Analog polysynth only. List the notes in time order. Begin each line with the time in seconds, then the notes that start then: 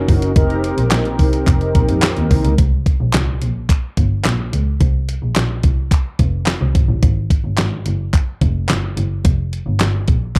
Already playing: C#4 D#4 F#4 A#4
0.35 C4 D#4 G4 A#4